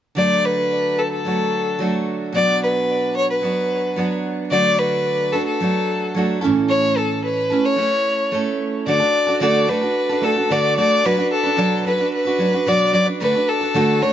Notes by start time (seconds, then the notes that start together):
0.15 D3 F#3 A3 D4 D5
0.20 F#4
0.45 B4
0.99 A4
1.12 A4
1.25 F#3 A3 D4 F#4
1.79 F#3 A3 D4 F#4
2.33 B2 F#3 B3 D4 D5
2.37 F#4
2.63 B4
3.17 C#5
3.30 B4
3.41 F#3 B3 D4 F#4
3.96 F#3 B3 D4 F#4
4.51 D3 F#3 A3 D4 F#4 D5
4.78 B4
5.33 A3 D4 F#4 A4
5.47 A4
5.60 F#3 A3 D4 F#4
6.14 F#3 A3 D4 F#4
6.41 E3 A3 C#4 E4 A4
6.46 A2
6.70 C#5
6.97 A4
7.25 B4
7.50 A3 C#4 E4 A4
7.65 C#5
7.76 A3 C#4 E4 A4
8.32 A3 C#4 E4 A4
8.87 D3 A3 D4 F#4 A4 D5
9.00 D4 F#4 A4
9.27 D4 F#4 A4
9.40 D3 A3 D4 F#4 A4 D5
9.68 A3 D4 F#4 A4 B4
9.81 D4 F#4 A4
10.09 D4 F#4 A4
10.22 A3 D4 F#4 A4
10.36 D4 F#4 A4
10.50 D3 A3 D4 F#4 A4 D5
10.78 A3 D4 F#4 A4 D5
11.04 B2 F#3 D4 F#4 B4
11.17 D4 F#4 B4
11.32 A4
11.43 D4 F#4 B4
11.57 B2 F#3 D4 F#4 B4
11.85 F#3 D4 F#4 B4
11.98 D4 F#4 B4
12.14 B4
12.25 D4 F#4 B4
12.38 F#3 D4 F#4 B4
12.52 D4 F#4 B4
12.66 B2 F#3 D4 F#4 B4 D5
12.93 F#3 D4 F#4 B4 D5
13.06 D4 F#4 B4
13.20 D3 A3 D4 F#4 A4 B4
13.34 D4 F#4 A4
13.49 A4
13.61 D4 F#4 A4
13.74 D3 A3 D4 F#4 A4
14.02 A3 D4 F#4 A4 C#5